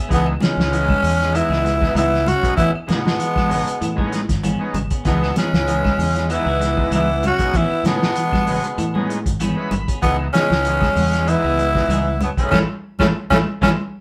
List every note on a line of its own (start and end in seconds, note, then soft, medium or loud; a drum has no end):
0.09 0.35 C#2 loud
0.09 0.27 E3 medium
0.09 0.35 E3 medium
0.09 0.34 G#3 medium
0.09 0.35 B3 medium
0.09 0.26 B3 medium
0.09 0.35 D#4 medium
0.09 0.36 E4 medium
0.09 0.25 G#4 medium
0.09 muted clean electric guitar stroke medium
0.09 kick medium
0.09 closed hi-hat medium
0.09 high conga soft
0.13 0.27 B2 medium
0.13 0.29 E3 medium
0.13 0.27 B3 medium
0.27 muted clean electric guitar stroke soft
0.27 claves medium
0.40 0.66 C#3 medium
0.40 1.37 C#3 medium
0.40 0.57 E3 medium
0.40 0.57 B3 medium
0.40 1.37 C#4 loud
0.40 0.57 D#4 medium
0.40 0.56 G#4 medium
0.40 snare medium
0.40 closed hi-hat medium
0.40 high conga medium
0.47 1.37 G#3 medium
0.57 0.93 C#2 medium
0.57 muted clean electric guitar stroke soft
0.57 snare medium
0.57 low conga medium
0.71 0.97 E3 medium
0.71 0.97 G#3 medium
0.71 0.97 B3 medium
0.71 0.97 D#4 medium
0.71 0.98 E4 medium
0.71 closed hi-hat medium
0.71 high conga soft
0.88 kick medium
0.88 high conga medium
0.88 claves medium
1.03 1.41 E2 medium
1.03 open hi-hat medium
1.03 low conga medium
1.19 muted clean electric guitar stroke soft
1.19 snare soft
1.19 closed hi-hat medium
1.33 1.59 E3 medium
1.33 1.96 E3 medium
1.33 1.53 G#3 medium
1.33 1.53 B3 medium
1.33 1.97 B3 medium
1.33 1.53 D#4 medium
1.33 1.53 E4 medium
1.33 1.97 E4 loud
1.33 muted clean electric guitar stroke soft
1.33 closed hi-hat medium
1.33 high conga soft
1.33 claves medium
1.49 1.86 C#2 medium
1.49 1.63 E3 medium
1.49 1.64 B3 medium
1.49 1.64 D#4 medium
1.49 1.64 G#4 medium
1.49 snare soft
1.65 1.89 G#3 medium
1.65 muted clean electric guitar stroke soft
1.65 snare soft
1.65 closed hi-hat soft
1.80 2.05 G#3 medium
1.80 2.05 B3 medium
1.80 2.05 D#4 medium
1.80 2.06 E4 medium
1.80 kick medium
1.80 snare soft
1.95 2.33 C#2 loud
1.95 2.12 E3 medium
1.95 2.20 E3 medium
1.95 2.28 E3 medium
1.95 2.11 B3 medium
1.95 2.31 B3 medium
1.95 2.11 D#4 medium
1.95 2.29 E4 loud
1.95 2.10 G#4 medium
1.95 closed hi-hat medium
1.95 high conga medium
1.95 claves medium
2.12 muted clean electric guitar stroke soft
2.12 snare soft
2.26 2.51 C#3 medium
2.26 2.57 F#3 medium
2.26 2.58 C#4 medium
2.26 2.56 F#4 medium
2.26 muted clean electric guitar stroke soft
2.26 closed hi-hat medium
2.26 high conga medium
2.26 low conga medium
2.26 claves medium
2.42 2.55 B1 medium
2.42 2.57 G#3 medium
2.42 2.57 B3 medium
2.42 2.56 B3 soft
2.42 2.58 D#4 medium
2.42 2.57 D#4 soft
2.42 2.58 E4 medium
2.42 2.57 G#4 medium
2.42 kick medium
2.42 closed hi-hat medium
2.57 2.71 A1 loud
2.57 2.74 D#3 medium
2.57 2.82 E3 medium
2.57 2.72 E3 medium
2.57 2.73 B3 medium
2.57 2.74 C#4 medium
2.57 2.71 E4 loud
2.57 2.72 G#4 medium
2.57 kick medium
2.57 closed hi-hat medium
2.57 high conga soft
2.74 muted clean electric guitar stroke soft
2.74 muted fingered electric bass stroke soft
2.74 claves medium
2.87 3.14 A2 medium
2.87 4.09 B2 medium
2.87 3.13 C#3 medium
2.87 3.05 D#3 medium
2.87 3.13 G#3 medium
2.87 4.10 G#3 medium
2.87 3.13 B3 medium
2.87 3.05 B3 medium
2.87 4.09 B3 medium
2.87 3.13 C#4 medium
2.87 3.04 C#4 medium
2.87 3.14 D#4 medium
2.87 3.04 G#4 medium
2.87 snare medium
2.87 closed hi-hat soft
2.87 high conga medium
3.05 muted clean electric guitar stroke soft
3.05 snare medium
3.05 low conga medium
3.19 3.44 E3 medium
3.19 closed hi-hat medium
3.19 high conga soft
3.36 3.61 A1 medium
3.36 muted clean electric guitar stroke soft
3.36 kick medium
3.36 snare soft
3.36 high conga medium
3.36 claves medium
3.48 3.75 C#3 medium
3.48 3.69 G#3 medium
3.48 3.69 B3 medium
3.48 3.69 C#4 medium
3.48 3.70 D#4 medium
3.48 open hi-hat medium
3.48 low conga medium
3.67 muted clean electric guitar stroke soft
3.67 closed hi-hat medium
3.81 4.31 A2 medium
3.81 4.06 E3 medium
3.81 muted clean electric guitar stroke soft
3.81 closed hi-hat medium
3.81 high conga soft
3.81 claves medium
3.96 4.11 D#3 medium
3.96 4.21 G#3 medium
3.96 4.21 B3 medium
3.96 4.11 B3 medium
3.96 4.21 C#4 medium
3.96 4.11 C#4 medium
3.96 4.22 D#4 loud
3.96 4.12 G#4 medium
3.96 kick medium
3.96 high conga medium
4.12 4.37 G#3 medium
4.12 muted clean electric guitar stroke soft
4.12 snare soft
4.12 closed hi-hat medium
4.29 4.54 G#1 medium
4.29 kick medium
4.29 snare soft
4.29 closed hi-hat medium
4.43 4.60 D#3 medium
4.43 4.68 E3 medium
4.43 4.59 B3 medium
4.43 4.59 C#4 medium
4.43 4.59 G#4 medium
4.43 closed hi-hat medium
4.43 high conga medium
4.43 claves medium
4.59 4.77 G#3 medium
4.59 4.78 B3 medium
4.59 4.78 C#4 medium
4.59 4.78 D#4 medium
4.59 muted clean electric guitar stroke soft
4.74 4.87 G#1 medium
4.74 4.99 C#3 medium
4.74 muted clean electric guitar stroke soft
4.74 closed hi-hat soft
4.74 high conga loud
4.74 low conga medium
4.74 claves medium
4.90 5.04 B3 soft
4.90 5.06 C#4 soft
4.90 5.05 G#4 soft
4.90 kick medium
4.90 closed hi-hat medium
5.05 5.30 C#2 medium
5.05 5.35 B2 medium
5.05 5.30 E3 medium
5.05 5.22 E3 medium
5.05 5.35 E3 medium
5.05 5.30 G#3 medium
5.05 5.21 B3 medium
5.05 5.31 B3 medium
5.05 5.35 B3 medium
5.05 5.21 D#4 medium
5.05 5.31 D#4 medium
5.05 5.32 E4 medium
5.05 5.23 G#4 medium
5.05 kick medium
5.05 snare soft
5.05 closed hi-hat medium
5.05 high conga soft
5.23 muted clean electric guitar stroke soft
5.23 snare soft
5.23 claves medium
5.36 6.27 C#3 medium
5.36 5.54 E3 medium
5.36 6.26 G#3 medium
5.36 5.53 B3 medium
5.36 6.26 C#4 medium
5.36 5.52 D#4 medium
5.36 5.52 G#4 medium
5.36 snare medium
5.36 closed hi-hat medium
5.36 high conga medium
5.53 5.89 C#2 medium
5.53 muted clean electric guitar stroke soft
5.53 snare medium
5.53 low conga medium
5.67 5.93 E3 medium
5.67 5.92 G#3 medium
5.67 5.92 B3 medium
5.67 5.93 D#4 medium
5.67 5.93 E4 medium
5.67 closed hi-hat medium
5.67 high conga soft
5.84 muted clean electric guitar stroke soft
5.84 kick medium
5.84 snare soft
5.84 high conga medium
5.84 claves medium
5.98 6.36 E2 medium
5.98 6.23 C#3 medium
5.98 open hi-hat medium
5.98 low conga medium
6.16 muted clean electric guitar stroke soft
6.16 snare soft
6.16 closed hi-hat soft
6.28 6.55 E3 medium
6.28 6.48 G#3 medium
6.28 6.49 B3 medium
6.28 6.89 B3 medium
6.28 6.49 D#4 medium
6.28 6.50 E4 medium
6.28 muted clean electric guitar stroke soft
6.28 closed hi-hat medium
6.28 claves medium
6.33 6.90 E3 medium
6.33 6.89 E4 medium
6.46 6.82 C#2 medium
6.46 6.60 E3 medium
6.46 6.60 B3 medium
6.46 6.60 D#4 medium
6.46 6.60 G#4 medium
6.61 6.85 G#3 medium
6.61 muted clean electric guitar stroke soft
6.61 snare soft
6.61 closed hi-hat soft
6.75 7.00 G#3 medium
6.75 7.01 B3 medium
6.75 7.01 D#4 medium
6.75 7.01 E4 medium
6.75 kick medium
6.91 7.29 C#2 medium
6.91 7.09 E3 medium
6.91 7.17 E3 medium
6.91 7.22 E3 medium
6.91 7.08 B3 medium
6.91 7.08 D#4 medium
6.91 7.22 E4 medium
6.91 7.07 G#4 medium
6.91 closed hi-hat medium
6.91 high conga medium
6.91 claves medium
6.95 7.23 B3 medium
7.09 muted clean electric guitar stroke soft
7.23 7.48 C#3 medium
7.23 7.56 F#3 medium
7.23 7.58 C#4 medium
7.23 7.58 F#4 loud
7.23 muted clean electric guitar stroke soft
7.23 closed hi-hat soft
7.23 high conga loud
7.23 low conga medium
7.23 claves medium
7.39 7.51 B1 medium
7.39 7.54 G#3 medium
7.39 7.54 B3 medium
7.39 7.53 B3 soft
7.39 7.54 D#4 soft
7.39 7.55 D#4 medium
7.39 7.55 E4 medium
7.39 7.53 G#4 soft
7.39 kick medium
7.39 closed hi-hat medium
7.54 7.67 A1 loud
7.54 7.71 D#3 medium
7.54 7.79 E3 medium
7.54 7.85 E3 medium
7.54 7.70 B3 medium
7.54 7.87 B3 medium
7.54 7.70 C#4 medium
7.54 7.86 E4 loud
7.54 7.70 G#4 medium
7.54 kick medium
7.54 closed hi-hat medium
7.70 muted fingered electric bass stroke soft
7.70 muted clean electric guitar stroke soft
7.70 claves medium
7.83 8.09 A2 medium
7.83 9.06 B2 medium
7.83 8.10 C#3 medium
7.83 8.02 D#3 medium
7.83 8.10 G#3 medium
7.83 8.01 B3 medium
7.83 8.11 B3 medium
7.83 9.07 B3 medium
7.83 8.01 C#4 medium
7.83 8.11 C#4 medium
7.83 8.11 D#4 medium
7.83 8.00 G#4 medium
7.83 snare medium
7.83 closed hi-hat medium
7.83 high conga loud
7.88 9.07 G#3 medium
8.01 muted clean electric guitar stroke soft
8.01 snare medium
8.16 8.41 E3 medium
8.16 closed hi-hat medium
8.16 high conga soft
8.32 8.58 A1 medium
8.32 muted clean electric guitar stroke soft
8.32 kick medium
8.32 snare soft
8.32 high conga medium
8.32 claves medium
8.47 8.72 C#3 medium
8.47 8.67 G#3 medium
8.47 8.67 B3 medium
8.47 8.67 C#4 medium
8.47 8.68 F#4 medium
8.47 open hi-hat medium
8.47 low conga medium
8.64 muted clean electric guitar stroke soft
8.64 closed hi-hat medium
8.78 9.27 A2 medium
8.78 9.03 E3 medium
8.78 muted clean electric guitar stroke soft
8.78 closed hi-hat medium
8.78 high conga soft
8.78 claves medium
8.94 9.08 D#3 medium
8.94 9.19 G#3 medium
8.94 9.08 B3 medium
8.94 9.19 B3 medium
8.94 9.08 C#4 medium
8.94 9.20 C#4 medium
8.94 9.20 D#4 medium
8.94 9.08 G#4 medium
8.94 high conga medium
9.09 9.34 G#3 medium
9.09 muted clean electric guitar stroke soft
9.09 closed hi-hat medium
9.26 9.51 G#1 medium
9.26 kick medium
9.26 closed hi-hat medium
9.40 9.57 D#3 medium
9.40 9.65 E3 medium
9.40 9.56 B3 medium
9.40 9.56 C#4 medium
9.40 9.56 G#4 medium
9.40 9.99 B5 medium
9.40 closed hi-hat medium
9.40 high conga medium
9.40 claves medium
9.56 9.74 G#3 medium
9.56 9.75 B3 medium
9.56 9.75 C#4 medium
9.56 9.75 E4 loud
9.56 muted clean electric guitar stroke soft
9.71 9.85 G#1 medium
9.71 9.96 D#3 medium
9.71 closed hi-hat soft
9.71 high conga loud
9.71 low conga medium
9.71 claves medium
9.88 10.01 B3 soft
9.88 10.02 C#4 medium
9.88 10.02 G#4 soft
9.88 kick medium
9.88 closed hi-hat medium
10.02 10.28 C#2 medium
10.02 10.16 B2 medium
10.02 10.19 E3 medium
10.02 10.27 E3 medium
10.02 10.19 E3 medium
10.02 10.27 G#3 medium
10.02 10.19 B3 medium
10.02 10.17 B3 loud
10.02 10.28 B3 medium
10.02 10.18 D#4 medium
10.02 10.28 D#4 medium
10.02 10.29 E4 medium
10.02 10.18 G#4 medium
10.02 kick medium
10.02 closed hi-hat medium
10.02 high conga soft
10.19 muted clean electric guitar stroke soft
10.19 claves medium
10.33 11.30 C#3 medium
10.33 10.59 C#3 medium
10.33 10.51 E3 medium
10.33 11.32 G#3 medium
10.33 10.50 B3 medium
10.33 11.30 C#4 loud
10.33 10.50 D#4 medium
10.33 10.49 G#4 medium
10.33 snare medium
10.33 closed hi-hat medium
10.33 high conga medium
10.50 10.87 C#2 medium
10.50 muted clean electric guitar stroke soft
10.50 snare medium
10.64 10.90 E3 medium
10.64 10.90 G#3 medium
10.64 10.90 B3 medium
10.64 10.90 D#4 medium
10.64 10.91 E4 medium
10.64 closed hi-hat medium
10.64 high conga soft
10.82 muted clean electric guitar stroke soft
10.82 kick medium
10.82 snare soft
10.82 high conga medium
10.82 claves medium
10.95 11.34 E2 medium
10.95 11.21 C#3 medium
10.95 open hi-hat medium
10.95 high conga medium
10.95 low conga medium
11.13 muted clean electric guitar stroke soft
11.13 snare soft
11.13 closed hi-hat soft
11.26 11.52 E3 medium
11.26 12.21 E3 medium
11.26 11.46 G#3 medium
11.26 11.46 B3 medium
11.26 11.47 D#4 medium
11.26 11.47 E4 medium
11.26 12.21 E4 loud
11.26 muted clean electric guitar stroke soft
11.26 closed hi-hat medium
11.26 claves medium
11.30 12.22 B3 loud
11.44 11.80 C#2 medium
11.44 11.58 E3 medium
11.44 11.58 B3 medium
11.44 11.58 D#4 medium
11.44 11.58 G#4 medium
11.59 11.83 G#3 medium
11.59 muted clean electric guitar stroke soft
11.59 closed hi-hat soft
11.75 11.99 G#3 medium
11.75 11.99 B3 medium
11.75 12.00 D#4 medium
11.75 12.00 E4 medium
11.75 kick medium
11.75 snare soft
11.88 12.27 C#2 medium
11.88 12.14 E3 medium
11.88 12.06 E3 medium
11.88 12.07 B3 medium
11.88 12.07 D#4 medium
11.88 12.06 G#4 medium
11.88 closed hi-hat medium
11.88 high conga medium
11.88 claves medium
12.07 muted clean electric guitar stroke soft
12.21 12.30 B2 medium
12.21 12.45 C#3 medium
12.21 12.30 B3 medium
12.21 muted clean electric guitar stroke soft
12.21 closed hi-hat soft
12.21 high conga loud
12.21 low conga medium
12.21 claves medium
12.25 12.31 F#3 medium
12.37 12.49 B1 medium
12.37 12.52 G#3 medium
12.37 12.52 B3 medium
12.37 12.50 C#4 medium
12.37 12.52 D#4 medium
12.37 12.53 D#4 medium
12.37 12.51 E4 medium
12.37 12.53 G#4 medium
12.37 kick medium
12.37 closed hi-hat medium
12.42 12.53 C#3 medium
12.42 12.53 A3 medium
12.51 12.64 A1 medium
12.51 12.61 C#3 loud
12.51 12.63 E3 medium
12.51 12.63 G#3 medium
12.51 12.63 A3 medium
12.51 12.63 A3 loud
12.51 12.61 A3 loud
12.51 12.59 C#4 loud
12.51 12.63 C#4 medium
12.51 12.63 E4 medium
12.51 kick medium
12.51 snare medium
12.51 high conga medium
12.51 claves loud
12.99 13.10 A1 medium
12.99 13.07 C#3 loud
12.99 13.09 E3 medium
12.99 13.09 G#3 medium
12.99 13.09 A3 loud
12.99 13.10 A3 medium
12.99 13.08 A3 loud
12.99 13.06 C#4 medium
12.99 13.09 C#4 medium
12.99 13.10 C#4 loud
12.99 13.09 E4 medium
12.99 kick medium
12.99 snare medium
12.99 high conga loud
12.99 claves medium
13.30 13.42 A1 medium
13.30 13.38 C#3 medium
13.30 13.40 E3 medium
13.30 13.40 G#3 medium
13.30 13.40 A3 loud
13.30 13.40 A3 medium
13.30 13.40 A3 loud
13.30 13.37 C#4 loud
13.30 13.41 C#4 medium
13.30 13.40 E4 medium
13.30 13.41 E4 medium
13.30 kick medium
13.30 snare medium
13.30 high conga loud
13.30 claves loud
13.61 13.73 A1 loud
13.61 13.68 C#3 loud
13.61 13.72 E3 medium
13.61 13.71 G#3 loud
13.61 13.71 A3 medium
13.61 13.71 C#4 medium
13.61 13.70 C#4 loud
13.61 13.71 E4 medium
13.61 13.72 E4 loud
13.61 kick medium
13.61 snare medium
13.61 high conga loud
13.61 claves loud